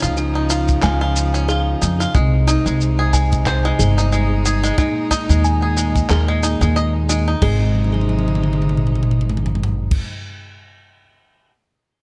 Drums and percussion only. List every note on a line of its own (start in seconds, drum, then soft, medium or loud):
0.03 shaker soft
0.17 shaker soft
0.50 shaker medium
0.68 kick medium
0.68 shaker soft
0.82 clap medium
0.82 shaker soft
1.16 shaker medium
1.34 shaker soft
1.49 shaker soft
1.82 shaker medium
2.01 shaker soft
2.15 kick medium
2.15 shaker soft
2.48 shaker medium
2.67 shaker soft
2.81 shaker soft
3.13 kick medium
3.13 shaker medium
3.32 kick loud
3.32 shaker soft
3.46 kick medium
3.46 clap medium
3.46 shaker soft
3.80 shaker medium
3.98 shaker soft
4.12 shaker soft
4.46 shaker medium
4.64 shaker soft
4.78 kick loud
4.78 shaker soft
5.11 kick medium
5.11 shaker medium
5.30 shaker soft
5.44 shaker soft
5.77 shaker medium
5.96 kick medium
5.96 shaker soft
6.10 clap medium
6.10 shaker soft
6.43 shaker medium
6.62 shaker soft
6.76 shaker soft
7.09 shaker medium
7.42 kick loud
7.42 crash medium
7.75 high tom soft
7.84 high tom soft
7.94 high tom medium
8.01 high tom medium
8.09 high tom medium
8.19 high tom medium
8.28 mid tom medium
8.35 mid tom medium
8.44 mid tom medium
8.53 mid tom medium
8.62 mid tom medium
8.69 mid tom medium
8.77 mid tom medium
8.87 mid tom medium
8.95 mid tom medium
9.03 mid tom medium
9.11 mid tom medium
9.21 mid tom medium
9.29 floor tom medium
9.37 floor tom medium
9.46 floor tom medium
9.55 floor tom medium
9.63 floor tom loud
9.91 kick loud
9.91 crash loud